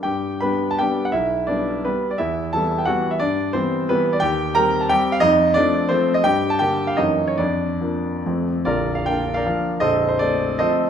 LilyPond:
<<
  \new Staff \with { instrumentName = "Grand piano" } { \time 3/4 \key g \major \tempo 4 = 168 <g' g''>4 <b' b''>8. a''16 <g' g''>8. fis''16 | <e' e''>4 <d' d''>4 <b b'>8. d''16 | <e' e''>4 <a' a''>8. g''16 <fis' fis''>8. e''16 | <d' d''>4 <c' c''>4 <b b'>8. d''16 |
\key bes \major <g' g''>4 <bes' bes''>8. a''16 <g' g''>8. f''16 | <ees' ees''>4 <d' d''>4 <c' c''>8. ees''16 | <g' g''>8. a''16 <g' g''>8. f''16 <ees' ees''>8. des''16 | <d' d''>2~ <d' d''>8 r8 |
<f' bes' d''>8. f''16 g''8. <bes' d'' f''>4~ <bes' d'' f''>16 | <a' c'' ees''>8. c''16 d''4 <a' c'' ees''>4 | }
  \new Staff \with { instrumentName = "Grand piano" } { \clef bass \time 3/4 \key g \major g,4 <g b d'>4 <g b d'>4 | b,,4 <g b>4 g4 | e,4 <e g b>4 <e g b>4 | g,4 <e g b>4 <e g>4 |
\key bes \major ees,4 <g c'>4 <g c'>4 | f,4 <f a c'>4 <f a>4 | g,4 <d bes>4 <ges, fes bes des'>4 | f,4 <f bes d'>4 <f, f a c'>4 |
<bes,,, bes,,>4 <bes d'>4 <f bes d'>4 | <bes,,, bes,,>4 <a c'>4 <f a c'>4 | }
>>